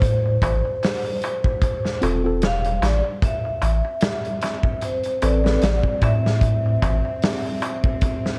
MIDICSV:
0, 0, Header, 1, 7, 480
1, 0, Start_track
1, 0, Key_signature, 0, "minor"
1, 0, Tempo, 800000
1, 11, Time_signature, 4, 2, 24, 8
1, 5033, End_track
2, 0, Start_track
2, 0, Title_t, "Vibraphone"
2, 0, Program_c, 0, 11
2, 0, Note_on_c, 0, 72, 86
2, 1197, Note_off_c, 0, 72, 0
2, 1472, Note_on_c, 0, 77, 109
2, 1685, Note_off_c, 0, 77, 0
2, 1716, Note_on_c, 0, 74, 93
2, 1818, Note_off_c, 0, 74, 0
2, 1948, Note_on_c, 0, 76, 114
2, 2907, Note_on_c, 0, 72, 83
2, 2928, Note_off_c, 0, 76, 0
2, 3146, Note_off_c, 0, 72, 0
2, 3148, Note_on_c, 0, 74, 89
2, 3623, Note_on_c, 0, 76, 97
2, 3634, Note_off_c, 0, 74, 0
2, 5033, Note_off_c, 0, 76, 0
2, 5033, End_track
3, 0, Start_track
3, 0, Title_t, "Tine electric piano"
3, 0, Program_c, 1, 4
3, 1207, Note_on_c, 1, 60, 92
3, 1210, Note_on_c, 1, 65, 84
3, 1217, Note_on_c, 1, 69, 93
3, 1323, Note_off_c, 1, 60, 0
3, 1324, Note_off_c, 1, 65, 0
3, 1328, Note_off_c, 1, 69, 0
3, 1342, Note_on_c, 1, 60, 91
3, 1348, Note_on_c, 1, 65, 83
3, 1357, Note_on_c, 1, 69, 102
3, 1445, Note_off_c, 1, 60, 0
3, 1448, Note_off_c, 1, 65, 0
3, 1453, Note_off_c, 1, 69, 0
3, 3133, Note_on_c, 1, 60, 91
3, 3135, Note_on_c, 1, 69, 85
3, 3142, Note_on_c, 1, 71, 93
3, 3246, Note_off_c, 1, 60, 0
3, 3247, Note_off_c, 1, 69, 0
3, 3250, Note_off_c, 1, 71, 0
3, 3267, Note_on_c, 1, 60, 89
3, 3273, Note_on_c, 1, 69, 88
3, 3276, Note_on_c, 1, 71, 106
3, 3368, Note_off_c, 1, 60, 0
3, 3370, Note_off_c, 1, 69, 0
3, 3372, Note_off_c, 1, 71, 0
3, 5033, End_track
4, 0, Start_track
4, 0, Title_t, "Synth drone"
4, 0, Program_c, 2, 95
4, 1948, Note_on_c, 2, 60, 82
4, 5033, Note_off_c, 2, 60, 0
4, 5033, End_track
5, 0, Start_track
5, 0, Title_t, "Sub bass"
5, 0, Program_c, 3, 38
5, 0, Note_on_c, 3, 45, 88
5, 230, Note_off_c, 3, 45, 0
5, 254, Note_on_c, 3, 33, 92
5, 370, Note_off_c, 3, 33, 0
5, 1214, Note_on_c, 3, 28, 78
5, 1672, Note_off_c, 3, 28, 0
5, 1692, Note_on_c, 3, 33, 86
5, 1809, Note_off_c, 3, 33, 0
5, 2172, Note_on_c, 3, 33, 93
5, 2289, Note_off_c, 3, 33, 0
5, 3135, Note_on_c, 3, 33, 100
5, 3348, Note_off_c, 3, 33, 0
5, 3375, Note_on_c, 3, 33, 79
5, 3490, Note_off_c, 3, 33, 0
5, 3613, Note_on_c, 3, 45, 84
5, 4072, Note_off_c, 3, 45, 0
5, 4095, Note_on_c, 3, 33, 89
5, 4210, Note_off_c, 3, 33, 0
5, 5033, End_track
6, 0, Start_track
6, 0, Title_t, "Darbuka"
6, 13, Note_on_c, 9, 63, 47
6, 73, Note_off_c, 9, 63, 0
6, 155, Note_on_c, 9, 63, 34
6, 215, Note_off_c, 9, 63, 0
6, 257, Note_on_c, 9, 63, 93
6, 317, Note_off_c, 9, 63, 0
6, 391, Note_on_c, 9, 63, 36
6, 451, Note_off_c, 9, 63, 0
6, 497, Note_on_c, 9, 63, 55
6, 557, Note_off_c, 9, 63, 0
6, 627, Note_on_c, 9, 63, 36
6, 687, Note_off_c, 9, 63, 0
6, 742, Note_on_c, 9, 63, 87
6, 802, Note_off_c, 9, 63, 0
6, 873, Note_on_c, 9, 63, 42
6, 933, Note_off_c, 9, 63, 0
6, 980, Note_on_c, 9, 63, 50
6, 1040, Note_off_c, 9, 63, 0
6, 1107, Note_on_c, 9, 63, 35
6, 1167, Note_off_c, 9, 63, 0
6, 1218, Note_on_c, 9, 63, 87
6, 1278, Note_off_c, 9, 63, 0
6, 1357, Note_on_c, 9, 63, 36
6, 1417, Note_off_c, 9, 63, 0
6, 1463, Note_on_c, 9, 63, 56
6, 1523, Note_off_c, 9, 63, 0
6, 1594, Note_on_c, 9, 63, 38
6, 1654, Note_off_c, 9, 63, 0
6, 1693, Note_on_c, 9, 63, 97
6, 1753, Note_off_c, 9, 63, 0
6, 1824, Note_on_c, 9, 63, 39
6, 1884, Note_off_c, 9, 63, 0
6, 1934, Note_on_c, 9, 63, 50
6, 1994, Note_off_c, 9, 63, 0
6, 2069, Note_on_c, 9, 63, 34
6, 2129, Note_off_c, 9, 63, 0
6, 2169, Note_on_c, 9, 63, 93
6, 2229, Note_off_c, 9, 63, 0
6, 2308, Note_on_c, 9, 63, 40
6, 2368, Note_off_c, 9, 63, 0
6, 2416, Note_on_c, 9, 63, 43
6, 2476, Note_off_c, 9, 63, 0
6, 2656, Note_on_c, 9, 63, 92
6, 2716, Note_off_c, 9, 63, 0
6, 2787, Note_on_c, 9, 63, 37
6, 2847, Note_off_c, 9, 63, 0
6, 2893, Note_on_c, 9, 63, 53
6, 2953, Note_off_c, 9, 63, 0
6, 3034, Note_on_c, 9, 63, 36
6, 3094, Note_off_c, 9, 63, 0
6, 3134, Note_on_c, 9, 63, 89
6, 3194, Note_off_c, 9, 63, 0
6, 3264, Note_on_c, 9, 63, 38
6, 3324, Note_off_c, 9, 63, 0
6, 3376, Note_on_c, 9, 63, 49
6, 3436, Note_off_c, 9, 63, 0
6, 3507, Note_on_c, 9, 63, 35
6, 3567, Note_off_c, 9, 63, 0
6, 3617, Note_on_c, 9, 63, 87
6, 3677, Note_off_c, 9, 63, 0
6, 3759, Note_on_c, 9, 63, 35
6, 3819, Note_off_c, 9, 63, 0
6, 3860, Note_on_c, 9, 63, 42
6, 3920, Note_off_c, 9, 63, 0
6, 3994, Note_on_c, 9, 63, 35
6, 4054, Note_off_c, 9, 63, 0
6, 4093, Note_on_c, 9, 63, 96
6, 4153, Note_off_c, 9, 63, 0
6, 4228, Note_on_c, 9, 63, 38
6, 4288, Note_off_c, 9, 63, 0
6, 4340, Note_on_c, 9, 63, 51
6, 4400, Note_off_c, 9, 63, 0
6, 4470, Note_on_c, 9, 63, 38
6, 4530, Note_off_c, 9, 63, 0
6, 4572, Note_on_c, 9, 63, 95
6, 4632, Note_off_c, 9, 63, 0
6, 4714, Note_on_c, 9, 63, 37
6, 4774, Note_off_c, 9, 63, 0
6, 4816, Note_on_c, 9, 63, 51
6, 4876, Note_off_c, 9, 63, 0
6, 4954, Note_on_c, 9, 63, 35
6, 5014, Note_off_c, 9, 63, 0
6, 5033, End_track
7, 0, Start_track
7, 0, Title_t, "Drums"
7, 12, Note_on_c, 9, 36, 113
7, 17, Note_on_c, 9, 42, 90
7, 72, Note_off_c, 9, 36, 0
7, 77, Note_off_c, 9, 42, 0
7, 252, Note_on_c, 9, 36, 92
7, 254, Note_on_c, 9, 42, 66
7, 312, Note_off_c, 9, 36, 0
7, 314, Note_off_c, 9, 42, 0
7, 497, Note_on_c, 9, 46, 82
7, 508, Note_on_c, 9, 38, 107
7, 557, Note_off_c, 9, 46, 0
7, 568, Note_off_c, 9, 38, 0
7, 728, Note_on_c, 9, 42, 74
7, 788, Note_off_c, 9, 42, 0
7, 865, Note_on_c, 9, 36, 94
7, 925, Note_off_c, 9, 36, 0
7, 968, Note_on_c, 9, 42, 85
7, 969, Note_on_c, 9, 36, 100
7, 1028, Note_off_c, 9, 42, 0
7, 1029, Note_off_c, 9, 36, 0
7, 1112, Note_on_c, 9, 38, 43
7, 1172, Note_off_c, 9, 38, 0
7, 1209, Note_on_c, 9, 42, 72
7, 1269, Note_off_c, 9, 42, 0
7, 1450, Note_on_c, 9, 42, 93
7, 1460, Note_on_c, 9, 38, 106
7, 1510, Note_off_c, 9, 42, 0
7, 1520, Note_off_c, 9, 38, 0
7, 1585, Note_on_c, 9, 42, 42
7, 1645, Note_off_c, 9, 42, 0
7, 1694, Note_on_c, 9, 42, 63
7, 1699, Note_on_c, 9, 38, 55
7, 1754, Note_off_c, 9, 42, 0
7, 1759, Note_off_c, 9, 38, 0
7, 1931, Note_on_c, 9, 42, 82
7, 1933, Note_on_c, 9, 36, 102
7, 1991, Note_off_c, 9, 42, 0
7, 1993, Note_off_c, 9, 36, 0
7, 2170, Note_on_c, 9, 42, 67
7, 2230, Note_off_c, 9, 42, 0
7, 2404, Note_on_c, 9, 42, 92
7, 2415, Note_on_c, 9, 38, 118
7, 2464, Note_off_c, 9, 42, 0
7, 2475, Note_off_c, 9, 38, 0
7, 2548, Note_on_c, 9, 42, 41
7, 2608, Note_off_c, 9, 42, 0
7, 2648, Note_on_c, 9, 42, 67
7, 2664, Note_on_c, 9, 38, 32
7, 2708, Note_off_c, 9, 42, 0
7, 2724, Note_off_c, 9, 38, 0
7, 2781, Note_on_c, 9, 36, 89
7, 2841, Note_off_c, 9, 36, 0
7, 2887, Note_on_c, 9, 42, 82
7, 2947, Note_off_c, 9, 42, 0
7, 3019, Note_on_c, 9, 42, 42
7, 3079, Note_off_c, 9, 42, 0
7, 3129, Note_on_c, 9, 42, 67
7, 3189, Note_off_c, 9, 42, 0
7, 3277, Note_on_c, 9, 38, 65
7, 3337, Note_off_c, 9, 38, 0
7, 3369, Note_on_c, 9, 42, 84
7, 3382, Note_on_c, 9, 38, 116
7, 3429, Note_off_c, 9, 42, 0
7, 3442, Note_off_c, 9, 38, 0
7, 3502, Note_on_c, 9, 36, 84
7, 3562, Note_off_c, 9, 36, 0
7, 3609, Note_on_c, 9, 42, 61
7, 3612, Note_on_c, 9, 36, 89
7, 3669, Note_off_c, 9, 42, 0
7, 3672, Note_off_c, 9, 36, 0
7, 3759, Note_on_c, 9, 38, 53
7, 3819, Note_off_c, 9, 38, 0
7, 3848, Note_on_c, 9, 36, 102
7, 3850, Note_on_c, 9, 42, 82
7, 3908, Note_off_c, 9, 36, 0
7, 3910, Note_off_c, 9, 42, 0
7, 4093, Note_on_c, 9, 42, 64
7, 4094, Note_on_c, 9, 36, 83
7, 4153, Note_off_c, 9, 42, 0
7, 4154, Note_off_c, 9, 36, 0
7, 4331, Note_on_c, 9, 46, 81
7, 4340, Note_on_c, 9, 38, 106
7, 4391, Note_off_c, 9, 46, 0
7, 4400, Note_off_c, 9, 38, 0
7, 4571, Note_on_c, 9, 42, 66
7, 4631, Note_off_c, 9, 42, 0
7, 4703, Note_on_c, 9, 36, 97
7, 4763, Note_off_c, 9, 36, 0
7, 4807, Note_on_c, 9, 42, 84
7, 4811, Note_on_c, 9, 36, 105
7, 4867, Note_off_c, 9, 42, 0
7, 4871, Note_off_c, 9, 36, 0
7, 4955, Note_on_c, 9, 38, 46
7, 5015, Note_off_c, 9, 38, 0
7, 5033, End_track
0, 0, End_of_file